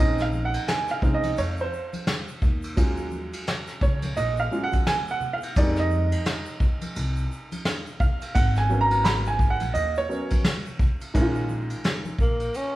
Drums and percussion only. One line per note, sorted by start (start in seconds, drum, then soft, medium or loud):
0.18 snare soft
0.18 shaker medium
0.33 high conga medium
0.33 shaker soft
0.54 ride medium
0.54 shaker soft
0.68 snare loud
0.68 hi-hat pedal medium
0.68 ride medium
0.68 shaker medium
0.88 snare soft
0.88 shaker soft
1.02 kick medium
1.02 low conga medium
1.02 shaker soft
1.23 ride medium
1.23 high conga medium
1.23 shaker soft
1.37 ride medium
1.37 shaker medium
1.57 shaker soft
1.73 shaker medium
1.93 ride soft
1.93 high conga medium
1.93 shaker soft
2.07 snare loud
2.07 hi-hat pedal soft
2.07 ride medium
2.07 shaker medium
2.28 shaker soft
2.42 kick medium
2.42 low conga medium
2.42 shaker soft
2.62 ride medium
2.62 shaker soft
2.77 kick loud
2.77 ride medium
2.77 shaker medium
2.97 shaker soft
3.11 high conga medium
3.11 shaker medium
3.33 ride medium
3.33 shaker soft
3.47 snare loud
3.47 hi-hat pedal medium
3.47 ride medium
3.47 shaker medium
3.67 snare soft
3.67 shaker medium
3.81 kick loud
3.81 low conga medium
3.81 shaker soft
4.02 ride medium
4.02 high conga medium
4.02 shaker soft
4.17 ride medium
4.17 shaker medium
4.37 shaker soft
4.52 shaker medium
4.72 kick medium
4.72 ride medium
4.72 high conga medium
4.72 shaker soft
4.87 snare loud
4.87 hi-hat pedal soft
4.87 ride medium
4.87 shaker medium
5.07 shaker soft
5.21 low conga medium
5.21 shaker soft
5.41 ride medium
5.41 shaker soft
5.56 kick loud
5.56 ride medium
5.56 shaker medium
5.76 snare soft
5.76 shaker medium
5.91 high conga medium
5.91 shaker medium
6.12 ride medium
6.12 shaker soft
6.26 snare loud
6.26 hi-hat pedal soft
6.26 ride medium
6.26 shaker medium
6.46 shaker medium
6.60 kick medium
6.60 low conga medium
6.60 shaker soft
6.81 ride medium
6.81 high conga medium
6.81 shaker soft
6.96 ride medium
6.96 shaker medium
7.16 shaker soft
7.32 shaker medium
7.52 ride medium
7.52 high conga medium
7.52 shaker soft
7.65 snare loud
7.65 hi-hat pedal soft
7.65 ride medium
7.65 shaker medium
7.87 shaker soft
8.00 kick loud
8.00 low conga medium
8.00 shaker soft
8.21 ride medium
8.21 shaker soft
8.35 kick loud
8.35 ride medium
8.35 shaker medium
8.55 snare soft
8.55 shaker medium
8.70 high conga medium
8.70 shaker medium
8.91 ride medium
8.91 shaker soft
9.04 snare loud
9.04 hi-hat pedal soft
9.04 ride medium
9.04 shaker medium
9.25 shaker medium
9.39 kick loud
9.39 low conga medium
9.39 shaker soft
9.60 ride medium
9.60 high conga medium
9.60 shaker soft
9.75 ride medium
9.75 shaker medium
9.96 shaker soft
10.11 shaker medium
10.30 kick medium
10.30 ride medium
10.30 high conga medium
10.30 shaker medium
10.44 snare loud
10.44 hi-hat pedal medium
10.44 ride medium
10.44 shaker medium
10.66 shaker soft
10.79 kick loud
10.79 low conga medium
10.79 shaker soft
11.01 ride medium
11.01 shaker soft
11.15 kick loud
11.15 ride medium
11.15 shaker medium
11.35 shaker soft
11.49 high conga soft
11.49 shaker soft
11.70 ride medium
11.70 shaker soft
11.84 snare loud
11.84 hi-hat pedal soft
11.84 ride medium
11.84 shaker medium
12.05 high conga medium
12.05 shaker medium
12.18 kick medium
12.18 low conga medium
12.18 shaker soft
12.39 ride soft
12.39 shaker soft
12.54 ride medium
12.54 shaker medium